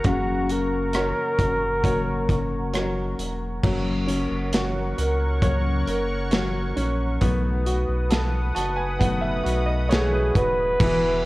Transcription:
0.00 0.95 F#4 soft
0.00 0.95 A#4 soft
0.00 0.95 C#5 medium
0.00 3.60 F#5 medium
0.00 3.60 A#5 medium
0.00 3.60 C#6 medium
0.04 1.13 F#1 medium
0.04 1.40 F#2 medium
0.04 3.59 C#3 medium
0.04 1.40 C#3 medium
0.04 1.41 F#3 medium
0.04 1.41 A#3 medium
0.04 1.40 C#4 medium
0.04 0.53 F#4 medium
0.04 1.39 F#4 medium
0.04 kick loud
0.04 closed hi-hat medium
0.50 3.20 A#4 loud
0.50 closed hi-hat medium
0.93 1.82 F#4 soft
0.93 1.82 A#4 soft
0.93 1.82 C#5 soft
0.93 cross-stick loud
0.93 closed hi-hat medium
1.39 3.15 F#1 medium
1.39 1.84 F#3 soft
1.39 1.84 A#3 soft
1.39 1.84 C#4 soft
1.39 1.84 F#4 soft
1.39 kick medium
1.39 closed hi-hat medium
1.84 2.74 F#2 medium
1.84 2.74 C#3 medium
1.84 2.73 F#3 medium
1.84 2.74 A#3 medium
1.84 2.74 C#4 medium
1.84 2.71 F#4 soft
1.84 2.75 F#4 medium
1.84 2.72 A#4 soft
1.84 2.72 C#5 medium
1.84 kick medium
1.84 closed hi-hat medium
2.29 kick medium
2.29 closed hi-hat medium
2.73 3.64 F#3 medium
2.73 3.64 A#3 medium
2.73 3.64 C#4 medium
2.73 3.60 F#4 soft
2.73 3.64 F#4 medium
2.73 3.61 A#4 soft
2.73 3.61 C#5 medium
2.73 cross-stick loud
2.73 closed hi-hat medium
3.18 3.60 E1 medium
3.18 closed hi-hat medium
3.63 4.27 F#1 loud
3.63 4.08 F#2 medium
3.63 4.09 C#3 medium
3.63 7.18 F#3 medium
3.63 4.09 F#3 medium
3.63 4.09 A#3 medium
3.63 4.09 C#4 medium
3.63 4.08 F#4 medium
3.63 7.18 A#4 medium
3.63 7.18 C#5 medium
3.63 7.18 F#5 medium
3.63 7.18 C#6 medium
3.63 kick loud
3.63 crash medium
4.07 5.42 A#3 soft
4.07 5.83 C#4 soft
4.07 5.43 C#4 soft
4.07 5.44 F#4 soft
4.07 closed hi-hat medium
4.11 5.43 F#3 soft
4.31 4.94 F#1 medium
4.53 6.29 F#4 medium
4.53 snare loud
4.53 closed hi-hat medium
4.98 5.84 C#2 medium
4.98 5.86 A#4 soft
4.98 closed hi-hat medium
5.42 6.32 F#2 medium
5.42 6.32 C#3 medium
5.42 6.32 F#3 medium
5.42 6.33 A#3 medium
5.42 6.33 C#4 medium
5.42 6.35 F#4 medium
5.42 7.18 C#5 medium
5.42 kick medium
5.42 closed hi-hat medium
5.87 6.73 F#1 medium
5.87 7.18 A#4 medium
5.87 closed hi-hat medium
6.31 7.22 F#3 medium
6.31 7.22 A#3 medium
6.31 7.23 C#4 medium
6.31 7.19 F#4 soft
6.31 7.23 F#4 medium
6.31 snare loud
6.31 closed hi-hat medium
6.76 7.19 A#1 medium
6.76 7.20 C#4 medium
6.76 closed hi-hat medium
7.21 7.85 B1 loud
7.21 7.67 B2 medium
7.21 7.67 F#3 medium
7.21 7.67 A3 medium
7.21 8.98 B3 medium
7.21 7.66 D#4 medium
7.21 7.65 F#4 loud
7.21 10.78 B4 medium
7.21 10.78 F#5 medium
7.21 10.78 D#6 medium
7.21 kick medium
7.21 closed hi-hat medium
7.66 9.01 A3 soft
7.66 9.01 D#4 soft
7.66 9.04 F#4 soft
7.66 8.53 F#4 medium
7.66 closed hi-hat medium
7.88 8.52 B1 loud
8.10 9.86 A4 medium
8.10 snare loud
8.10 closed hi-hat medium
8.55 9.42 F#1 medium
8.55 9.42 F#4 soft
8.55 8.76 A5 medium
8.55 closed hi-hat medium
8.76 8.98 G#5 medium
8.99 10.80 B2 medium
8.99 10.81 F#3 medium
8.99 10.81 A3 medium
8.99 10.75 B3 medium
8.99 9.21 F#5 medium
8.99 kick medium
8.99 closed hi-hat medium
9.04 10.81 D#4 medium
9.04 10.83 F#4 medium
9.21 9.64 E5 medium
9.43 10.31 B1 medium
9.43 10.33 F#4 medium
9.43 closed hi-hat medium
9.66 9.88 D#5 medium
9.89 10.77 A3 medium
9.89 10.11 C#5 medium
9.89 snare loud
9.89 closed hi-hat medium
9.93 10.38 G#4 medium
10.12 10.76 B4 medium
10.35 10.77 D#1 medium
10.35 10.79 F#4 medium
10.35 11.25 B4 loud
10.35 kick medium
10.35 closed hi-hat medium
10.80 11.25 E1 loud
10.80 11.25 E3 medium
10.80 11.25 G#3 medium
10.80 11.25 B3 medium
10.80 11.25 E4 medium
10.80 11.25 B4 medium
10.80 11.25 F#5 medium
10.80 11.25 G#5 medium
10.80 11.25 E6 medium
10.80 kick loud
10.80 crash loud
10.84 11.25 F#4 medium

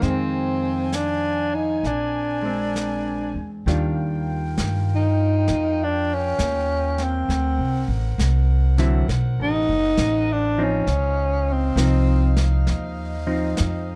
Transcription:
0.00 1.80 F2 medium
0.00 1.82 D#3 soft
0.00 0.97 C4 medium
0.00 brush sweep soft
0.00 snare soft
0.04 1.85 G#3 soft
0.04 1.83 C5 medium
0.04 1.83 F5 soft
0.04 3.50 G#5 medium
0.10 1.88 C4 soft
0.92 1.56 D4 medium
0.92 snare soft
0.92 hi-hat pedal soft
1.55 1.88 D#4 medium
1.83 3.31 A#1 medium
1.83 3.50 C4 medium
1.83 3.37 D4 medium
1.83 3.50 A#4 soft
1.83 3.50 D5 medium
1.83 brush sweep soft
1.83 snare soft
2.42 3.66 G#3 soft
2.42 3.67 C4 soft
2.48 3.67 D4 soft
2.76 snare soft
2.76 hi-hat pedal soft
3.34 3.64 E2 soft
3.66 4.55 D#2 medium
3.66 5.05 D#3 soft
3.66 5.06 G3 soft
3.66 5.06 D4 soft
3.66 7.25 F4 medium
3.66 5.06 F4 soft
3.66 10.70 A#4 medium
3.66 7.25 F5 medium
3.66 7.25 G5 medium
3.66 brush sweep soft
3.66 snare soft
4.58 5.46 G2 medium
4.58 snare medium
4.58 hi-hat pedal medium
4.95 5.85 D#4 medium
5.48 6.36 F2 medium
5.48 brush sweep soft
5.48 snare soft
5.84 6.15 D4 medium
6.14 7.05 C#4 medium
6.39 7.26 D#2 medium
6.39 snare soft
6.39 hi-hat pedal medium
6.98 snare soft
7.03 7.91 C4 medium
7.28 7.60 D2 medium
7.28 13.95 C5 medium
7.28 10.70 F#5 medium
7.28 brush sweep soft
7.28 snare soft
7.58 7.87 C2 medium
7.88 8.16 A1 medium
8.18 9.06 C2 medium
8.18 snare soft
8.18 hi-hat pedal soft
8.78 9.06 D3 medium
8.78 9.06 F#3 medium
8.78 9.06 C4 medium
8.78 9.06 E4 medium
8.78 snare soft
9.08 9.39 B1 medium
9.08 brush sweep soft
9.08 snare soft
9.39 9.68 A1 medium
9.39 10.34 D#4 medium
9.69 9.96 F#1 medium
9.97 10.85 A1 medium
9.97 snare medium
9.97 hi-hat pedal medium
10.32 10.65 D4 medium
10.58 10.85 F3 medium
10.58 10.86 C4 medium
10.58 10.86 D#4 medium
10.63 11.54 C#4 medium
10.87 11.75 C#2 medium
10.87 13.95 D#4 medium
10.87 12.66 D#5 medium
10.87 13.95 F5 medium
10.87 brush sweep soft
10.87 snare soft
11.52 12.40 C4 medium
11.76 12.64 C2 medium
11.76 13.15 F3 medium
11.76 13.15 C4 soft
11.76 13.16 D#4 medium
11.76 snare medium
11.76 hi-hat pedal medium
12.36 snare soft
12.67 13.56 D#2 medium
12.67 13.95 D#5 medium
12.67 brush sweep soft
12.67 snare soft
13.27 13.95 F3 medium
13.27 13.95 C4 medium
13.27 13.95 D#4 medium
13.57 13.95 F2 medium
13.57 snare medium
13.57 hi-hat pedal soft

